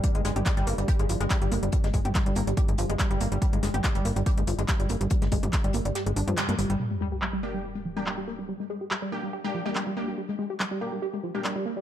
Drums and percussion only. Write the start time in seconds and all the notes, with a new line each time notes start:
0.04 kick, closed hi-hat
0.15 closed hi-hat
0.25 snare, closed hi-hat, open hi-hat
0.36 closed hi-hat, mid tom
0.45 kick, snare, clap, closed hi-hat
0.57 closed hi-hat
0.67 closed hi-hat, open hi-hat
0.78 closed hi-hat
0.88 kick, closed hi-hat
0.99 closed hi-hat
1.09 closed hi-hat, open hi-hat
1.20 closed hi-hat
1.30 kick, snare, clap, closed hi-hat
1.42 closed hi-hat
1.51 closed hi-hat, open hi-hat
1.63 closed hi-hat
1.72 kick, closed hi-hat
1.84 snare, closed hi-hat
1.93 kick, closed hi-hat, open hi-hat
2.05 closed hi-hat, mid tom
2.15 kick, snare, clap, closed hi-hat
2.26 closed hi-hat
2.35 closed hi-hat, open hi-hat
2.47 closed hi-hat
2.57 kick, closed hi-hat
2.68 closed hi-hat
2.78 closed hi-hat, open hi-hat
2.90 closed hi-hat
2.99 kick, snare, clap, closed hi-hat
3.11 closed hi-hat
3.20 closed hi-hat, open hi-hat
3.32 closed hi-hat
3.42 kick, closed hi-hat
3.53 closed hi-hat
3.63 snare, closed hi-hat, open hi-hat
3.74 closed hi-hat, mid tom
3.84 kick, snare, clap, closed hi-hat
3.95 closed hi-hat
4.05 closed hi-hat, open hi-hat
4.16 closed hi-hat
4.26 kick, closed hi-hat
4.37 closed hi-hat
4.47 closed hi-hat, open hi-hat
4.58 closed hi-hat
4.68 kick, snare, clap, closed hi-hat
4.80 closed hi-hat
4.89 closed hi-hat, open hi-hat
5.01 closed hi-hat
5.10 kick, closed hi-hat
5.22 snare, closed hi-hat
5.31 kick, closed hi-hat, open hi-hat
5.43 closed hi-hat, mid tom
5.53 kick, snare, clap, closed hi-hat
5.64 closed hi-hat
5.73 closed hi-hat, open hi-hat
5.85 closed hi-hat
5.95 snare, closed hi-hat
6.06 closed hi-hat
6.16 open hi-hat
6.28 closed hi-hat, mid tom
6.37 snare, clap, closed hi-hat
6.49 closed hi-hat, mid tom
6.59 closed hi-hat, open hi-hat
6.70 closed hi-hat
7.22 clap
8.06 clap
8.91 clap
9.75 clap
10.60 clap
11.44 clap